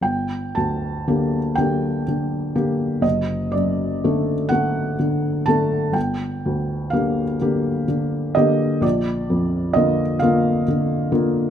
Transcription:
X:1
M:6/8
L:1/8
Q:3/8=41
K:Gm
V:1 name="Felt piano"
g a2 g3 | e d2 ^f2 a | g2 f3 e | d2 e f z2 |]
V:2 name="Felt piano" clef=bass
G,,, D,, [D,B,G] [D,B,G] D, [D,B,G] | ^F,,, ^F,, [D,A,A] [D,A,A] D, [D,A,A] | G,,, D,, [D,B,G] [D,B,G] D, [D,B,G] | B,,, F,, [D,B,F] [D,B,F] D, [D,B,F] |]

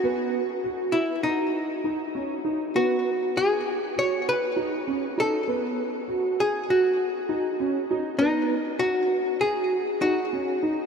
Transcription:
X:1
M:9/8
L:1/8
Q:3/8=66
K:Bmix
V:1 name="Hollow-body jazz guitar"
F3 E D4 z | F2 G2 c B3 A- | A3 G F4 z | D2 F2 G2 F3 |]
V:2 name="Grand piano"
B,2 F2 F2 D C D | B,2 F2 F2 D C D | B,2 F2 F2 D C D | B,2 F2 F2 D C D |]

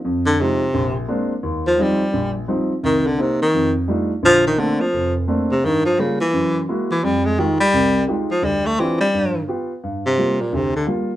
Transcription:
X:1
M:4/4
L:1/8
Q:"Swing" 1/4=172
K:Fdor
V:1 name="Grand piano"
F,,2 [F,A,E] z B,,,2 [A,B,CD] z | E,,2 [F,G,CE] z B,,,2 [F,G,CE] z | C,,2 [B,CE] z F,,2 [G,=A,DEF] z | [B,,,D,]2 [=A,B,CD] z F,,,2 [A,B,CD] z |
G,,2 [G,B,F] z ^F,,2 [^G,^A,=E^F] z | F,,2 [A,EFG] z C,,2 [A,EFG] z | D,,2 [CD=EFG] z G,,2 [=B,FG] z | [K:Gm] G,,2 [G,B,F] z D,,2 [G,B,F] z |]
V:2 name="Baritone saxophone" clef=bass
z D, C,3 z3 | z F, G,3 z3 | E, D, C, E,2 z3 | F, E, D, F,2 z2 C, |
E, F, _D, =E,3 z E, | G, A, E, G,3 z F, | G, =A, =E, G,3 z2 | [K:Gm] z C,2 B,, C, D, z2 |]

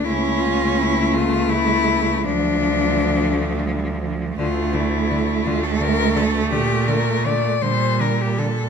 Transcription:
X:1
M:12/8
L:1/16
Q:3/8=56
K:Dm
V:1 name="Cello"
E2 F2 E2 F2 E4 D8- D2 z2 | F2 E4 F A B2 A2 G2 B2 d2 c2 B G A2 |]
V:2 name="Cello" clef=bass
^C6 A,6 F,6 A,2 G,2 F,2 | A,16- A,2 G,6 |]
V:3 name="Cello" clef=bass
A,12 F,12 | D,2 D,2 D,2 D,2 D,2 D,2 D,2 D,2 D,2 D,2 D,2 D,2 |]
V:4 name="Cello" clef=bass
^C,,12 D,,12 | D,,6 D,,6 B,,6 B,,6 |]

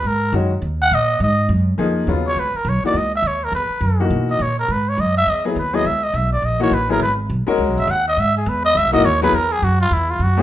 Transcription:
X:1
M:4/4
L:1/8
Q:"Swing" 1/4=207
K:G#dor
V:1 name="Muted trumpet"
A2 z3 f d2 | d2 z4 z c | [K:C#dor] B A c =d ^d e c A | B4 z d c A |
B c d e d G B d | e d e =d ^d c B A | B z4 e f d | e G B d e d c B |
A G F ^E =E ^E F z |]
V:2 name="Upright piano"
z2 [D,G,CF] z4 z | z4 [E,A,DG]2 [C,F,B,E]2 | [K:C#dor] z3 [E,A,DF] z4 | z3 [E,A,DF]3 z2 |
z4 z [F,B,EG] z [F,B,EG] | z4 z [E,A,DF] z [F,B,EG] | z3 [G,CFA]3 z2 | z4 z [E,A,DF] z [F,B,EG] |
z6 z [=A,^B,DF] |]
V:3 name="Upright bass" clef=bass
G,,2 F,,2 D,,2 A,,2 | G,,2 F,,2 E,,2 D,,2 | [K:C#dor] C,, z B,,, z C,,2 D,,2 | E,, z F,,2 B,,2 A,,2 |
G,,2 F,,2 E,,2 D,,2 | C,,2 B,,,2 A,,,2 =A,,,2 | G,,,2 B,,, z (3C,, B,,, G,,, D,,2 | G,,2 E,,2 (3C,, B,,, G,,, D,,2 |
E,,2 F,,2 E,,2 F,,2 |]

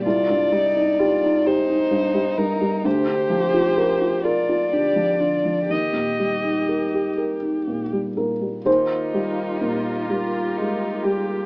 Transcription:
X:1
M:6/8
L:1/16
Q:3/8=42
K:Eb
V:1 name="Violin"
d6 c4 B2 | c6 d6 | e6 z6 | F12 |]
V:2 name="String section"
z12 | z12 | z12 | [FGB]12 |]
V:3 name="Cello"
F2 E2 F2 E6 | G6 F2 G2 F2 | G8- G z3 | E6 F2 E2 G2 |]
V:4 name="Felt piano"
z12 | z12 | z8 z2 B2 | c12 |]
V:5 name="Felt piano" clef=bass
C,, G,, G, E G E G E G,, G, G,, G, | D,, D, F, F B F B F D, F, D, F, | E,, B,, G, E B G B E B,, G, B,, G, | E,,2 G,2 B,,2 G,2 A,2 G,2 |]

